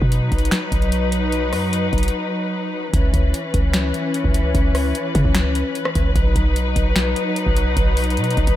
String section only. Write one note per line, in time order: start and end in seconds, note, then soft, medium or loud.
0.00 2.90 F#3 medium
0.00 2.90 D#4 medium
0.00 2.90 B4 medium
2.93 6.12 E3 medium
2.93 6.12 C#4 medium
2.93 8.56 B4 medium
6.16 8.56 F#3 medium
6.16 8.56 D#4 medium